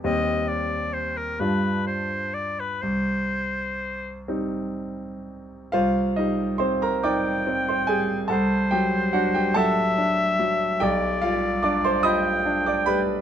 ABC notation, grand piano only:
X:1
M:6/8
L:1/16
Q:3/8=47
K:Cm
V:1 name="Grand piano"
z12 | z12 | [Fcf]2 [Ee]2 [cc'] [Bb] [dgd']3 [cc'] [Aa]2 | [=A^f=a]2 [Gg]2 [^Ff] [Gg] [Afa]6 |
[Gdg]2 [Ff]2 [dd'] [cc'] [e=be']3 [dd'] [=Bb]2 |]
V:2 name="Grand piano" clef=bass
[E,,G,CG]6 [G,,G,DF]6 | C,,6 [G,CE]6 | C,,2 G,2 C2 E2 C2 G,2 | C,,2 ^F,2 D2 F,2 D2 F,2 |
=B,,,2 G,2 D2 F2 D2 G,2 |]